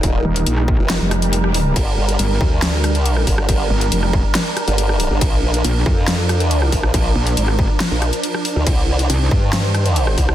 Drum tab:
CC |----------------|x---x---x---x---|x---x---x---x---|x---x---x---x---|
HH |x--xx---x-xxx-o-|x--xx---x-xxx-o-|x--xx---x-xxx-o-|x--xx---x-xxx-o-|
SD |-----r--o-r--r--|--------o-r--r-r|-----r--o-r--r--|--------o-r--r-r|
BD |o-----o---------|o-----o-------o-|o-----o---------|o-----o-------o-|

CC |x---x---x---x---|x---x---x---x---|
HH |x--xx---x-xxx-o-|x--xx---x-xxx-o-|
SD |-----r--o-r--r--|--------o-r--r-r|
BD |o-----o---------|o-----o-------o-|